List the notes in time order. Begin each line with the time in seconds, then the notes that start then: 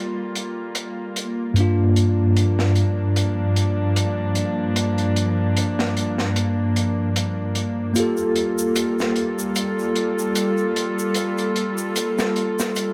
Already playing: G3 A#3 F4 G4 A4
0.35 closed hi-hat
0.75 closed hi-hat
1.16 closed hi-hat
1.54 G2 F3 A#3 D4, closed hi-hat
1.59 D4 F4
1.96 closed hi-hat
2.37 closed hi-hat
2.59 snare
2.75 closed hi-hat
3.16 closed hi-hat
3.56 closed hi-hat
3.96 closed hi-hat
4.35 closed hi-hat
4.76 closed hi-hat
4.98 closed hi-hat
5.16 closed hi-hat
5.57 closed hi-hat
5.79 snare
5.97 closed hi-hat
6.18 snare
6.36 closed hi-hat
6.76 closed hi-hat
7.16 closed hi-hat
7.55 closed hi-hat
7.94 G3 A#3 F4 A4, closed hi-hat, shaker
7.98 G4 A4
8.17 shaker
8.36 closed hi-hat
8.58 shaker
8.76 closed hi-hat, shaker
8.99 snare, shaker
9.16 closed hi-hat
9.39 shaker
9.55 closed hi-hat, shaker
9.79 shaker
9.96 closed hi-hat
10.19 shaker
10.35 closed hi-hat, shaker
10.57 shaker
10.76 closed hi-hat
10.99 shaker
11.14 closed hi-hat, shaker
11.38 closed hi-hat, shaker
11.56 closed hi-hat
11.78 shaker
11.96 closed hi-hat, shaker
12.18 snare, shaker
12.36 closed hi-hat
12.59 snare, shaker
12.75 closed hi-hat, shaker